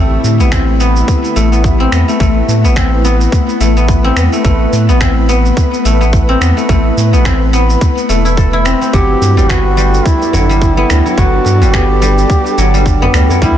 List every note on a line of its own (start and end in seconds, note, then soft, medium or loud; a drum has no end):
0.00 0.18 A1 medium
0.00 1.36 A3 medium
0.00 8.93 A3 medium
0.00 0.46 C4 loud
0.00 10.74 E4 medium
0.00 1.48 G4 medium
0.24 0.41 A2 loud
0.24 shaker medium
0.34 13.58 B4 medium
0.40 1.03 A1 medium
0.40 0.58 B3 medium
0.40 shaker soft
0.52 0.86 C4 medium
0.52 finger snap medium
0.52 kick loud
0.52 shaker soft
0.80 1.52 B3 medium
0.80 shaker medium
0.96 shaker soft
1.08 kick medium
1.08 shaker soft
1.24 shaker soft
1.36 1.87 A1 medium
1.36 2.08 A3 medium
1.36 shaker medium
1.52 1.86 B3 medium
1.52 shaker soft
1.64 kick medium
1.64 shaker soft
1.80 1.98 C4 medium
1.92 2.04 E2 medium
1.92 2.64 B3 medium
1.92 finger snap medium
1.92 shaker medium
2.08 2.20 A3 medium
2.08 shaker soft
2.20 2.42 A1 loud
2.20 3.60 A3 medium
2.20 kick loud
2.20 shaker soft
2.48 2.66 A2 loud
2.48 shaker medium
2.64 3.27 A1 medium
2.64 2.83 B3 medium
2.64 shaker soft
2.76 3.11 C4 medium
2.76 finger snap medium
2.76 kick loud
2.76 shaker soft
3.05 3.76 B3 loud
3.05 shaker medium
3.21 shaker soft
3.32 kick loud
3.32 shaker soft
3.49 shaker soft
3.60 4.11 A1 medium
3.60 4.32 A3 medium
3.60 shaker medium
3.77 4.10 B3 medium
3.77 shaker soft
3.88 kick medium
3.88 shaker soft
4.04 4.23 C4 loud
4.16 4.28 E2 medium
4.16 4.88 B3 medium
4.16 finger snap medium
4.16 shaker medium
4.32 4.44 A3 medium
4.32 shaker soft
4.45 4.66 A1 medium
4.45 5.85 A3 medium
4.45 kick loud
4.45 shaker soft
4.73 4.90 A2 loud
4.73 shaker medium
4.88 5.52 A1 medium
4.88 5.07 B3 medium
4.88 shaker soft
5.01 5.35 C4 medium
5.01 finger snap medium
5.01 kick loud
5.01 shaker soft
5.29 6.00 B3 loud
5.29 shaker medium
5.45 shaker soft
5.57 kick loud
5.57 shaker soft
5.74 shaker soft
5.85 6.36 A1 loud
5.85 6.56 A3 medium
5.85 shaker medium
6.01 6.35 B3 medium
6.01 shaker soft
6.13 kick loud
6.13 shaker soft
6.29 6.47 C4 loud
6.41 6.53 E2 medium
6.41 7.13 B3 medium
6.41 finger snap medium
6.41 shaker medium
6.57 6.69 A3 medium
6.57 shaker soft
6.69 6.91 A1 loud
6.69 8.09 A3 medium
6.69 kick loud
6.69 shaker soft
6.97 7.15 A2 loud
6.97 shaker medium
7.13 7.76 A1 medium
7.13 7.31 B3 medium
7.13 shaker soft
7.25 7.59 C4 medium
7.25 finger snap medium
7.25 kick loud
7.25 shaker soft
7.53 8.71 B3 loud
7.53 shaker medium
7.70 shaker soft
7.81 kick loud
7.81 shaker soft
7.97 shaker soft
8.09 8.74 E1 medium
8.09 11.42 A3 medium
8.09 shaker medium
8.25 8.53 E4 medium
8.25 shaker soft
8.37 10.57 A4 medium
8.37 kick loud
8.37 shaker soft
8.53 11.14 E4 loud
8.65 8.81 C4 medium
8.65 finger snap medium
8.65 shaker medium
8.81 9.55 C4 medium
8.81 shaker soft
8.93 9.15 G1 medium
8.93 10.32 F#3 medium
8.93 9.52 G4 loud
8.93 kick loud
8.93 shaker soft
9.18 9.39 G2 loud
9.18 13.58 D4 medium
9.18 13.58 A4 medium
9.22 djembe slap soft
9.22 shaker medium
9.37 10.00 G1 medium
9.37 9.76 G3 medium
9.37 djembe slap soft
9.37 djembe tone medium
9.37 shaker soft
9.49 10.77 B3 medium
9.49 10.08 F#4 loud
9.49 finger snap medium
9.49 kick loud
9.49 shaker soft
9.77 10.48 G3 loud
9.77 shaker medium
9.94 shaker soft
10.06 11.21 E4 loud
10.06 kick loud
10.06 shaker soft
10.22 djembe slap soft
10.22 shaker soft
10.33 10.85 G1 medium
10.33 11.04 F#3 medium
10.33 djembe bass medium
10.33 shaker medium
10.49 10.88 G3 medium
10.49 shaker soft
10.62 kick loud
10.62 shaker soft
10.77 11.74 B3 loud
10.90 11.01 D2 medium
10.90 11.60 G3 medium
10.90 finger snap medium
10.90 djembe slap soft
10.90 djembe tone medium
10.90 shaker medium
11.06 11.17 F#3 medium
11.06 shaker soft
11.18 11.39 G1 loud
11.18 12.57 F#3 medium
11.18 11.77 F#4 loud
11.18 kick loud
11.18 shaker soft
11.45 11.63 G2 loud
11.45 djembe slap soft
11.45 shaker medium
11.61 12.25 G1 medium
11.61 12.01 G3 medium
11.61 djembe slap soft
11.61 djembe tone medium
11.61 shaker soft
11.74 13.02 B3 medium
11.74 13.15 G4 medium
11.74 finger snap medium
11.74 kick loud
11.74 shaker soft
12.02 12.73 G3 loud
12.02 shaker medium
12.18 shaker soft
12.30 kick loud
12.30 shaker soft
12.46 shaker soft
12.58 13.09 G1 loud
12.58 13.29 F#3 medium
12.58 shaker medium
12.74 13.13 G3 medium
12.74 shaker soft
12.86 kick medium
12.86 shaker soft
13.02 13.58 B3 loud
13.02 djembe bass medium
13.14 13.26 D2 medium
13.14 13.41 G3 medium
13.14 finger snap medium
13.14 djembe tone medium
13.14 shaker medium
13.29 13.47 F#3 medium
13.29 djembe bass medium
13.29 shaker soft
13.42 13.58 D2 medium
13.42 13.58 D3 medium
13.42 13.58 G3 medium
13.42 13.58 E4 loud
13.42 kick loud
13.42 shaker soft
13.47 13.58 A3 medium